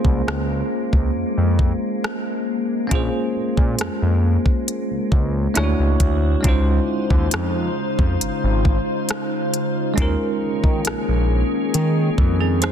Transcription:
Already playing: ambient pad G#3 A#3, tine electric piano A#3 C#4 F4 G#4 C5
0.05 analog synth bass C2, kick
0.27 analog synth bass C#2, cross-stick
0.93 analog synth bass C#2, kick
1.16 analog synth bass F2
1.37 analog synth bass F2
1.59 kick
2.04 cross-stick
2.87 tine electric piano A#3 C#4 F4
2.91 analog synth bass A#1, tine electric piano G#4 C5, kick, closed hi-hat
3.36 analog synth bass A#2
3.57 analog synth bass A#2, kick
3.79 analog synth bass F2, cross-stick, closed hi-hat
4.02 analog synth bass F2
4.46 kick
4.68 closed hi-hat
4.90 analog synth bass C#2
5.12 analog synth bass C#2, kick
5.54 analog synth bass D2, tine electric piano A3 D4 E4 F4 C#5, cross-stick, closed hi-hat
5.64 tine electric piano F#4
5.79 analog synth bass C#2
6.00 analog synth bass D2, kick, closed hi-hat
6.41 analog synth bass C#2, ambient pad C#3 D#4 F4 C5, tine electric piano G#3 C#4 D#4, kick, closed hi-hat
6.47 tine electric piano F4 C5
7.10 analog synth bass D#2, kick
7.31 analog synth bass F2, cross-stick, closed hi-hat
7.99 analog synth bass F2, kick
8.21 analog synth bass G#1, closed hi-hat
8.44 analog synth bass G#1
8.65 kick
9.09 cross-stick, closed hi-hat
9.54 closed hi-hat
9.94 ambient pad D#3 A#3 C#4 G#4, tine electric piano G#3 C#4, kick, closed hi-hat
9.98 analog synth bass D#2, tine electric piano D#4 F4
10.02 tine electric piano A#4
10.42 analog synth bass D#3
10.64 analog synth bass D#3, kick
10.85 analog synth bass A#1, cross-stick, closed hi-hat
11.08 analog synth bass A#1
11.74 analog synth bass D#3, closed hi-hat
12.18 analog synth bass F2, kick
12.40 tine electric piano C4 G#4
12.62 tine electric piano D#4 C5, cross-stick, closed hi-hat

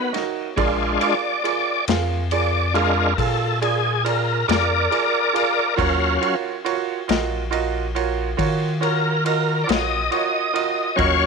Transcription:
Already playing: tonewheel organ B3
0.13 grand piano D#4 F#4 A#4 D#5, snare, ride
0.56 analog synth bass A#1, tonewheel organ G#3 D4 F4, grand piano F4 G#4 A#4 D5, kick, ride
1.00 grand piano F4 G#4 A#4 F5, tonewheel organ D5, ride
1.44 grand piano F4 G#4 A#4 D5, ride
1.88 analog synth bass F2, grand piano F4 G#4 A#4 F5, snare, ride
2.31 grand piano F4 G#4 A#4 D5, tonewheel organ D5, ride
2.74 tonewheel organ G#3 D4 F4 A#4, grand piano F4 G#4 A#4 F5, ride
3.17 analog synth bass A#2, grand piano F4 G#4 A#4 F5, tonewheel organ A4, kick, ride
3.61 grand piano F4 G#4 A#4 D5, tonewheel organ G#4, ride
4.04 grand piano F4 G#4 A#4 D5, tonewheel organ A#4, ride
4.48 analog synth bass F2, grand piano F4 G#4 A#4 D5, tonewheel organ A#4 D5, snare, ride
4.91 grand piano F4 G#4 A#4 D5, ride
5.33 grand piano F4 G#4 A#4 F5, ride
5.76 analog synth bass D#2, tonewheel organ F#3 C#4 F5, grand piano F4 F#4 A#4 C#5, kick, ride
6.20 grand piano F4 F#4 A#4 C#5, ride
6.65 grand piano F4 F#4 A#4 C#5, ride
7.08 analog synth bass A#1, grand piano F4 F#4 A#4 D#5, snare, ride
7.51 grand piano F4 F#4 A#4 D#5, ride
7.95 grand piano F4 F#4 A#4 C#5, ride
8.37 analog synth bass D#3, grand piano F4 F#4 A#4 C#5, kick, ride
8.80 grand piano F4 F#4 A#4 C#5, tonewheel organ A#4, ride
9.25 grand piano F4 F#4 A#4 D#5, tonewheel organ A#4, ride
9.64 grand piano F4 F#4 A#4 C#5, tonewheel organ D5
9.69 analog synth bass A#1, tonewheel organ D#5, snare, ride
10.11 grand piano F4 F#4 A#4 C#5, tonewheel organ D#5, ride
10.53 grand piano F4 F#4 A#4 D#5, ride
10.96 analog synth bass D#2, tonewheel organ F#3 C#4 C#5 F5, grand piano F4 F#4 A#4 D#5, kick, ride

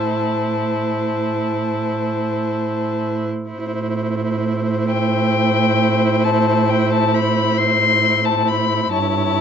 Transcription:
Already playing: cello A2, viola E4, violin C5 A5
3.51 cello A2, viola E4, violin C5
4.89 violin G5
6.24 violin A5
6.70 violin G5
6.93 violin A5
7.14 violin B5
7.58 violin C6
8.25 violin A5
8.48 violin B5
8.92 cello G2, viola E4, violin C#5 A5

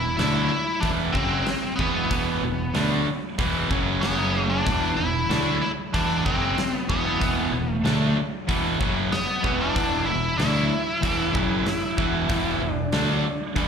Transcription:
Already playing: fingered electric bass E1, distorted electric guitar E2 B2, lead electric guitar E4
0.17 fingered electric bass D2, distorted electric guitar D3 A3 D4, lead electric guitar E4, snare, open hi-hat
0.48 lead electric guitar E4, muted distorted electric guitar stroke, muted overdriven electric guitar stroke, muted fingered electric bass stroke
0.80 fingered electric bass E1, distorted electric guitar E2 B2 E3, lead electric guitar D4, kick, open hi-hat
1.13 fingered electric bass F#1, distorted electric guitar F#2 C#3 F#3, lead electric guitar C4, kick
1.46 muted fingered electric bass stroke, muted overdriven electric guitar stroke, muted distorted electric guitar stroke, snare, open hi-hat
1.76 fingered electric bass E1, distorted electric guitar E2 B2, lead electric guitar B3, kick
1.80 distorted electric guitar E3
2.11 fingered electric bass E1, distorted electric guitar E2 B2 E3, kick, open hi-hat
2.43 fingered electric bass E1, distorted electric guitar E2 B2
2.74 fingered electric bass D2, distorted electric guitar D3 A3 D4, snare, open hi-hat
3.06 muted fingered electric bass stroke, muted overdriven electric guitar stroke, muted distorted electric guitar stroke
3.39 fingered electric bass E1, distorted electric guitar E2 B2 E3, kick, open hi-hat
3.71 fingered electric bass F#1, distorted electric guitar F#2 C#3 F#3, kick
4.01 fingered electric bass F#1, distorted electric guitar F#2 C#3 F#3, lead electric guitar B3, snare, open hi-hat
4.50 lead electric guitar D4
4.67 fingered electric bass E1, distorted electric guitar E2 B2 E3, kick, open hi-hat
4.96 fingered electric bass E1, distorted electric guitar E2 B2, lead electric guitar E4
5.30 fingered electric bass D2, distorted electric guitar D3 A3 D4, snare, open hi-hat
5.61 lead electric guitar E4, muted overdriven electric guitar stroke, muted fingered electric bass stroke, muted distorted electric guitar stroke
5.94 fingered electric bass E1, distorted electric guitar E2 B2 E3, lead electric guitar D4, kick, open hi-hat
6.25 fingered electric bass F#1, distorted electric guitar F#2 C#3 F#3, lead electric guitar C4, kick
6.58 muted overdriven electric guitar stroke, muted fingered electric bass stroke, muted distorted electric guitar stroke, snare, open hi-hat
6.72 lead electric guitar B3
6.89 fingered electric bass E1, distorted electric guitar E2 B2 E3, lead electric guitar B3, kick
7.21 fingered electric bass E1, distorted electric guitar E2 B2 E3, kick, open hi-hat
7.54 fingered electric bass E1, distorted electric guitar E2 B2
7.73 lead electric guitar A3
7.85 fingered electric bass D2, distorted electric guitar D3 A3 D4, snare, open hi-hat
8.17 muted overdriven electric guitar stroke, muted distorted electric guitar stroke, muted fingered electric bass stroke
8.48 fingered electric bass E1, distorted electric guitar E2 B2 E3, kick, open hi-hat
8.80 fingered electric bass F#1, distorted electric guitar F#2 C#3 F#3, kick
9.12 lead electric guitar B3, muted distorted electric guitar stroke, muted overdriven electric guitar stroke, muted fingered electric bass stroke, snare, open hi-hat
9.43 fingered electric bass E1, distorted electric guitar E2 B2 E3, kick
9.61 lead electric guitar D4
9.76 fingered electric bass E1, distorted electric guitar E2 B2 E3, kick, open hi-hat
10.06 fingered electric bass E1, distorted electric guitar E2 B2, lead electric guitar E4
10.38 fingered electric bass D2, distorted electric guitar D3 A3 D4, lead electric guitar E4, snare, open hi-hat
10.71 muted distorted electric guitar stroke, muted overdriven electric guitar stroke, muted fingered electric bass stroke
11.01 fingered electric bass E1, distorted electric guitar E2 B2 E3, kick, open hi-hat
11.33 fingered electric bass F#1, distorted electric guitar F#2 C#3 F#3, kick
11.66 muted distorted electric guitar stroke, muted fingered electric bass stroke, muted overdriven electric guitar stroke, snare, open hi-hat
11.97 fingered electric bass E1, distorted electric guitar E2 B2 E3, kick
12.29 fingered electric bass E1, distorted electric guitar E2 B2 E3, kick, open hi-hat
12.61 fingered electric bass E1, distorted electric guitar E2 B2
12.75 lead electric guitar D4
12.92 fingered electric bass D2, distorted electric guitar D3 A3 D4, snare, open hi-hat
13.25 muted distorted electric guitar stroke, muted fingered electric bass stroke, muted overdriven electric guitar stroke
13.55 fingered electric bass E1, distorted electric guitar E2 B2 E3, kick, open hi-hat

